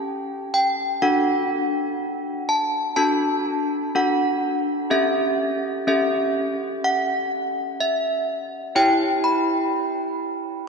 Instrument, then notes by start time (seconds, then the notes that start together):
handbells
Already playing: C#4 G4 A4 A5
0.54 G5
1.02 D4 F#4 A4 F#5
2.49 A5
2.96 D4 F#4 A4 A5
3.95 D4 F#4 A4 F#5
4.90 C#4 G4 A4 E5
5.87 C#4 G4 A4 E5
6.84 F#5
7.80 E5
8.75 E4 G4 C#5 G5
9.24 B5